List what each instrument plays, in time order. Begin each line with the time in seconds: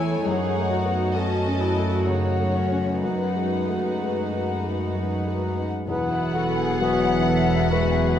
Already playing: grand piano E2 E3 A3 B3 E4, cello section E2, viola section E4 A4, violin section C#5 G#5
0.25 grand piano F#2, cello section F#2, viola section D#4 G#4, violin section F#5
0.56 grand piano A3
0.69 viola section F#4
0.86 grand piano B3
1.15 grand piano A3, viola section C#4, violin section D#5 A5
1.47 grand piano C#4
1.59 viola section E4
1.77 grand piano A3
2.06 grand piano C#3, viola section D#4, violin section C#5 F#5
2.40 grand piano A3
2.53 viola section C#4
2.71 grand piano C#4
3.01 grand piano F#2, viola section D#4 F#4, violin section B4 F#5
3.36 grand piano G#3
3.67 grand piano A3
3.99 grand piano G#3
4.32 grand piano D#4
4.64 grand piano G#3
4.95 grand piano F#3
5.27 grand piano G#3
5.58 grand piano D#4
5.87 grand piano E1 E2, double bass section E1, cello section E2, french horn section F#3 F#4, violin section B3 F#5, viola section B3, clarinet G#4, cor anglais B4, flute F#5
6.10 violin section E4
6.34 violin section F#4, clarinet A4
6.57 violin section G#4
6.80 grand piano F#3 F#4 B4, violin section F#4, cor anglais G#4, clarinet B4, flute E5
7.03 violin section E4
7.25 violin section B3, cor anglais A4
7.47 violin section E4
7.69 grand piano G#3 F#4 B4, violin section F#4, clarinet F#4, cor anglais B4
7.91 violin section G#4
8.16 clarinet G#4